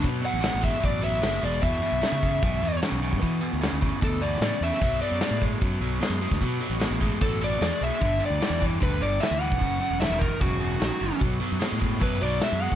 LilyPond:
<<
  \new Staff \with { instrumentName = "Lead electric guitar" } { \time 4/4 \key b \minor \tempo 4 = 150 r8 fis''4 e''8 d''8 e''4 d''8 | e''2. r4 | r2 a'8 d''4 e''8~ | e''8 d''4 r2 r8 |
r2 a'8 d''4 e''8~ | e''8 d''4 r8 b'8 d''8 e''8 fis''8~ | fis''4 e''8 ais'8 fis'2 | r2 b'8 d''8 e''8 fis''8 | }
  \new Staff \with { instrumentName = "Overdriven electric guitar" } { \clef bass \time 4/4 \key b \minor <b, fis>8 <b, fis>8 <b, gis>8 <b, gis>8 <b, fis>8 <b, fis>8 <b, gis>8 <b, gis>8 | <e, b,>8 <e, b,>8 <e, cis>8 <e, cis>8 <e, b,>8 <e, b,>8 <e, cis>8 <e, cis>8 | <e, b,>8 <e, b,>8 <e, cis>8 <e, cis>8 <e, b,>8 <e, b,>8 <e, cis>8 <e, cis>8 | <b, fis>8 <b, fis>8 <b, gis>8 <b, gis>8 <b, fis>8 <b, fis>8 <b, gis>8 <b, gis>8 |
<b, fis>8 <b, fis>8 <b, gis>8 <b, gis>8 <b, fis>8 <b, fis>8 <b, gis>8 <b, gis>8 | <g, d>8 <g, d>8 <g, e>8 <g, e>8 <g, d>8 <g, d>8 <g, e>8 <g, e>8 | <fis, cis>8 <fis, cis>8 <fis, dis>8 <fis, dis>8 <fis, cis>8 <fis, cis>8 <fis, dis>8 <fis, dis>8 | <b, fis>8 <b, fis>8 <b, gis>8 <b, gis>8 <b, fis>8 <b, fis>8 <b, gis>8 <b, gis>8 | }
  \new Staff \with { instrumentName = "Fingered electric bass" } { \clef bass \time 4/4 \key b \minor b,8 r16 a,,8 a,,8 r16 a,,4 fis,,8 e,,8 | e,8 r16 b,,16 r16 cis8. b,,8 e,8 r16 b,,8 g,16 | e8 r16 d,8 d,8 r16 d,4 a,16 r16 e,16 r16 | b,,8 r16 fis,16 r16 a,8. fis,8 b,,8 r16 fis,8 d,16 |
b,8 r16 a,,8 a,,8 r16 a,,4 e,16 r16 b,,16 r16 | g,,8 r16 d,16 r16 e,8. d,8 g,,8 r16 d,8 b,,16 | fis,,8 r16 e,,8 e,,8 r16 e,,4 ais,,16 r16 fis,,16 r16 | b,,8 r16 fis,16 r16 a,8. fis,8 b,,8 r16 fis,8 d,16 | }
  \new DrumStaff \with { instrumentName = "Drums" } \drummode { \time 4/4 <hho bd>4 <hho sn>8 bd8 <hho bd>4 <hho sn>4 | <hho bd>4 <hho sn>8 bd8 <hho bd>4 <hho sn>8. bd16 | <hho bd>4 <hho sn>8 bd8 <hho bd>4 <hho sn>8. sn16 | <hho bd>4 <hho sn>8 bd8 <hho bd>4 <hho sn>8. <bd sn>16 |
<hho bd>4 <hho sn>8 bd8 <hho bd>4 <hho sn>4 | <hho bd>4 <hho sn>8 bd8 <hho bd>4 <hho sn>8. bd16 | <hho bd>4 <hho sn>8 bd8 <hho bd>4 <hho sn>4 | <hho bd>4 <hho sn>8 bd8 <hho bd>4 <hho sn>8. bd16 | }
>>